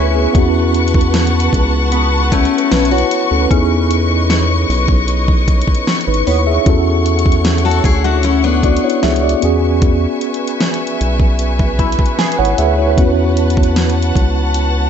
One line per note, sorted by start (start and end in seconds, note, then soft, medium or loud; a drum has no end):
0.00 0.27 D2 loud
0.00 0.32 C#4 medium
0.00 0.32 E4 medium
0.00 0.36 E4 medium
0.00 0.15 G#4 medium
0.00 0.14 B4 medium
0.00 6.62 B4 medium
0.00 0.14 C#5 medium
0.00 0.37 C#5 medium
0.00 0.31 E5 medium
0.00 0.36 E5 medium
0.00 0.31 G#5 medium
0.00 14.90 C#6 loud
0.15 0.32 B3 medium
0.15 0.53 G#4 medium
0.33 1.49 E2 loud
0.33 3.46 B3 medium
0.33 0.41 C4 medium
0.33 2.68 E4 medium
0.33 3.48 F#5 medium
0.33 3.48 A5 medium
0.33 kick loud
0.33 closed hi-hat medium
0.37 2.71 C#4 medium
0.37 2.69 F#4 medium
0.74 closed hi-hat medium
0.88 closed hi-hat medium
0.94 kick medium
1.01 closed hi-hat medium
1.14 snare loud
1.14 closed hi-hat medium
1.27 closed hi-hat medium
1.40 closed hi-hat medium
1.53 2.48 C#2 loud
1.53 kick medium
1.53 closed hi-hat medium
1.92 2.85 B3 medium
1.92 closed hi-hat medium
2.32 2.70 A3 medium
2.32 2.70 C#4 medium
2.32 kick medium
2.32 closed hi-hat medium
2.45 closed hi-hat medium
2.58 closed hi-hat medium
2.72 3.04 B1 medium
2.72 2.91 C#4 medium
2.72 2.90 E4 medium
2.72 2.90 B4 medium
2.72 snare loud
2.72 closed hi-hat medium
2.85 closed hi-hat medium
2.91 3.29 E4 medium
2.91 3.48 F#4 medium
2.91 3.29 C#5 medium
2.98 closed hi-hat medium
3.11 closed hi-hat medium
3.31 3.47 D2 medium
3.31 3.69 C#4 medium
3.31 3.68 A4 medium
3.49 4.65 E2 loud
3.49 6.62 B3 medium
3.49 4.43 C#4 medium
3.49 5.44 D#4 medium
3.49 5.45 E4 medium
3.49 5.45 G#4 medium
3.49 6.63 C#5 medium
3.49 6.63 D#5 medium
3.49 kick loud
3.49 closed hi-hat medium
3.91 closed hi-hat medium
4.30 snare loud
4.30 closed hi-hat medium
4.69 5.64 B1 loud
4.69 open hi-hat soft
4.88 kick loud
5.08 closed hi-hat medium
5.28 kick medium
5.48 kick medium
5.48 closed hi-hat medium
5.62 closed hi-hat medium
5.68 kick medium
5.75 closed hi-hat medium
5.87 snare loud
5.87 closed hi-hat medium
6.01 closed hi-hat soft
6.07 6.23 G#1 loud
6.07 6.27 D#4 medium
6.07 6.26 B4 medium
6.14 closed hi-hat soft
6.27 6.59 D#2 loud
6.27 7.02 B3 medium
6.27 6.46 E4 medium
6.27 6.46 C#5 medium
6.27 open hi-hat medium
6.47 6.84 G#4 medium
6.47 6.84 E5 medium
6.64 7.81 E2 loud
6.64 9.38 C#4 medium
6.64 8.59 E4 medium
6.64 8.60 F#4 medium
6.64 9.40 A4 medium
6.64 9.40 C#5 medium
6.64 9.40 F#5 medium
6.64 kick loud
6.64 closed hi-hat medium
6.68 8.61 A4 medium
7.06 closed hi-hat medium
7.19 closed hi-hat medium
7.26 kick medium
7.32 closed hi-hat medium
7.45 snare loud
7.45 closed hi-hat medium
7.58 closed hi-hat medium
7.65 7.84 F#4 medium
7.65 7.84 A4 medium
7.71 closed hi-hat medium
7.84 8.79 D2 loud
7.84 8.04 E4 medium
7.84 8.03 G#4 medium
7.84 kick loud
7.84 closed hi-hat medium
8.04 8.23 D4 medium
8.04 8.23 F#4 medium
8.23 8.43 C#4 medium
8.23 8.43 E4 medium
8.23 closed hi-hat medium
8.44 9.39 B3 medium
8.44 9.39 D4 medium
8.63 8.83 F#4 medium
8.63 8.83 D5 medium
8.63 kick medium
8.63 closed hi-hat medium
8.77 closed hi-hat medium
8.84 9.03 E4 medium
8.84 9.02 C#5 medium
8.90 closed hi-hat medium
9.03 9.35 C#2 medium
9.03 9.22 G#4 medium
9.03 9.22 E5 medium
9.03 snare loud
9.03 closed hi-hat medium
9.16 closed hi-hat medium
9.23 9.42 F#4 medium
9.23 9.61 D5 medium
9.29 closed hi-hat medium
9.41 10.07 E2 medium
9.41 12.53 B3 medium
9.41 12.54 C#4 medium
9.41 12.15 F#4 medium
9.41 14.90 B4 medium
9.41 12.94 E5 medium
9.41 12.95 G#5 medium
9.41 closed hi-hat medium
9.45 12.16 G#4 medium
9.82 kick loud
9.82 closed hi-hat medium
10.21 closed hi-hat medium
10.34 closed hi-hat medium
10.48 closed hi-hat medium
10.60 snare loud
10.60 closed hi-hat medium
10.74 closed hi-hat medium
10.87 closed hi-hat medium
11.01 11.95 B1 loud
11.01 closed hi-hat medium
11.20 kick loud
11.39 closed hi-hat medium
11.59 kick medium
11.79 12.72 E4 medium
11.79 12.16 B5 medium
11.79 kick medium
11.79 closed hi-hat medium
11.92 closed hi-hat medium
11.99 kick medium
12.06 closed hi-hat medium
12.19 13.12 G#4 medium
12.19 12.37 G#5 medium
12.19 snare loud
12.19 closed hi-hat medium
12.32 closed hi-hat medium
12.39 12.55 G#1 medium
12.39 12.58 E4 medium
12.39 12.57 C#5 medium
12.39 12.57 F#5 medium
12.45 closed hi-hat medium
12.58 12.99 D2 loud
12.58 12.78 G#4 medium
12.58 12.95 E5 medium
12.58 closed hi-hat medium
12.78 12.98 E4 medium
12.78 13.16 C#5 medium
12.96 14.12 E2 loud
12.96 14.90 B3 medium
12.96 14.90 C#4 medium
12.96 14.90 E4 medium
12.96 14.90 F#5 medium
12.96 14.90 A5 medium
12.96 kick loud
12.96 closed hi-hat medium
13.00 14.90 F#4 medium
13.37 closed hi-hat medium
13.50 closed hi-hat medium
13.57 kick medium
13.63 closed hi-hat medium
13.76 snare loud
13.76 closed hi-hat medium
13.90 closed hi-hat medium
14.02 closed hi-hat medium
14.16 14.90 C#2 loud
14.16 kick loud
14.16 closed hi-hat medium
14.54 closed hi-hat medium